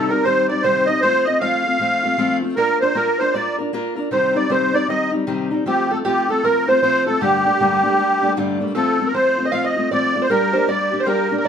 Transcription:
Already playing: C3 D#3 G3 C4 A4
0.09 G3 C4 D#4 A#4
0.24 D#3 G3 C4 D#4 C5
0.48 G3 C4 D#4 D5
0.63 C3 D#3 G3 C4 D#4 C5
0.86 C4 D#4 D#5
0.90 G3
1.01 F3 A3 C4 F4 C5
1.25 A3 F4 D#5
1.29 C4
1.40 F3 A3 C4 F4 F5
1.65 A3 C4 F4
1.79 F3 A3 C4 F4
2.03 A3 C4 F4
2.18 F3 A3 C4 F4
2.42 A3 C4 F4
2.56 A#3 D4 F4 A#4
2.80 D4 F4 A#4 C5
2.95 A#3 D4 F4 A#4
3.19 D4 F4 A#4 C5
3.33 A#3 D4 F4 A#4 D5
3.58 D4 F4 A#4
3.73 A#3 D4 F4 A#4
3.96 D4 F4 A#4
4.11 C3 D#3 G3 C4 D#4 C5
4.35 G3 C4 D#4 D5
4.49 C3 D#3 G3 C4 D#4 C5
4.74 G3 C4 D#4 D5
4.88 D#3 G3 C4 D#4 D#5
5.11 G3 C4 D#4
5.27 C3 D#3 G3 C4 D#4
5.51 G3 C4 D#4
5.66 F3 A3 C4 F4 G4
5.90 A3 C4 F4 A4
6.05 F3 A3 C4 F4 G4
6.29 A3 C4 F4 A4
6.44 F3 A3 C4 F4 A#4
6.67 A3 C4 F4 C5
6.82 F3 A3 C4 F4 C5
7.06 A3 C4 F4 A4
7.21 G2 D3 G3 A3 A#3 D4 G4
7.45 G3 A3 A#3 D4
7.60 G2 D3 G3 A3 A#3 D4
7.83 G3 A3 A#3 D4
7.97 G3 A3 A#3 D4
8.22 G3 A3 A#3 D4
8.36 G2 D3 G3 A3 A#3 D4
8.60 G3 A3 A#3 D4
8.75 F3 A3 C4 F4 A4
8.99 A3 C4 F4
9.07 A#4
9.14 F3 A3 C4 F4 C5
9.38 A3 C4 F4
9.45 D#5
9.52 F3 A3 C4 F4 F5
9.64 D#5
9.76 A3 C4 F4
9.91 F3 A3 C4 F4 D5
10.15 A3 C4 F4
10.22 C5
10.30 G3 A#3 D4 G4 A#4
10.53 A#3 D4 G4 C5
10.68 G3 A#3 D4 G4 D5
10.92 A#3 D4 G4
11.00 C5
11.06 G3 A#3 D4 G4 A#4
11.30 A#3 D4 G4
11.38 A#4
11.45 G3 D5

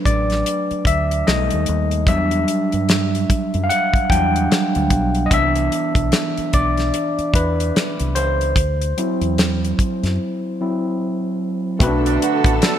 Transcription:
Already playing: F#3 A3 D4 B4
0.05 A1 D5, kick, closed hi-hat
0.30 snare, closed hi-hat
0.46 closed hi-hat
0.71 muted fingered electric bass stroke, closed hi-hat
0.85 D2 E5, kick, closed hi-hat
1.11 closed hi-hat
1.27 B1 G3 A3 D#4 D#5, snare, closed hi-hat
1.50 D#2, closed hi-hat
1.66 D#2, closed hi-hat
1.91 closed hi-hat
2.07 E2 F#3 G3 D4 E5, kick, closed hi-hat
2.31 closed hi-hat
2.48 closed hi-hat
2.72 G2, closed hi-hat
2.89 snare, closed hi-hat
3.15 closed hi-hat
3.30 muted fingered electric bass stroke, kick, closed hi-hat
3.54 F#2, closed hi-hat
3.64 F5
3.69 F#5, closed hi-hat
3.94 kick, closed hi-hat
4.10 E2 F#3 G3 D4 G5, kick, closed hi-hat
4.36 closed hi-hat
4.52 snare, closed hi-hat
4.75 D2, closed hi-hat
4.90 B1, kick, closed hi-hat
5.15 closed hi-hat
5.26 D#5
5.31 C2 E3 B3 D4 E5, kick, closed hi-hat
5.56 closed hi-hat
5.72 closed hi-hat
5.95 B1, kick, closed hi-hat
6.12 snare, closed hi-hat
6.37 muted fingered electric bass stroke, closed hi-hat
6.53 B1 D5, kick, closed hi-hat
6.78 snare, closed hi-hat
6.94 closed hi-hat
7.18 muted fingered electric bass stroke, closed hi-hat
7.34 E2 B4, kick, closed hi-hat
7.60 closed hi-hat
7.76 snare, closed hi-hat
8.00 C2, closed hi-hat
8.15 C#2 C5, closed hi-hat
8.41 closed hi-hat
8.56 D2, kick, closed hi-hat
8.82 closed hi-hat
8.97 F#3 C4 E4, closed hi-hat
9.21 E2, closed hi-hat
9.38 snare, closed hi-hat
9.65 closed hi-hat
9.79 muted fingered electric bass stroke, kick, closed hi-hat
10.03 F#2, snare, closed hi-hat
10.61 F#3 C4 E4
11.79 B1 D3 A3 B3 C4 F#4 A4 B4, kick, closed hi-hat
11.87 D4
12.04 B2 A3 D4, closed hi-hat
12.21 D3 B3 F#4, closed hi-hat
12.44 A1, kick, closed hi-hat
12.61 F#3 D4 A4, snare, closed hi-hat

